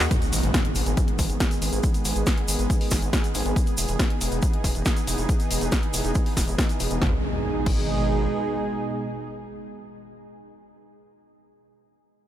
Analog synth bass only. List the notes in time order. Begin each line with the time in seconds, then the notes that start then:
0.00 D#2
0.33 G#1
0.43 G#1
0.76 G#1
0.86 G#1
1.19 G#1
1.29 G#1
1.62 G#1
1.73 G#1
2.05 G#1
2.16 G#1
2.48 G#1
2.59 G#1
2.92 G#1
3.02 G#1
3.35 G#1
3.46 G#1
3.78 E1
3.89 E1
4.21 E1
4.32 E1
4.64 E1
4.75 E1
5.07 E1
5.18 E1
5.51 E1
5.61 E1
5.94 E1
6.04 E1
6.37 E1
6.48 E1
6.80 E1
6.91 E1
7.02 G#1
7.66 G#1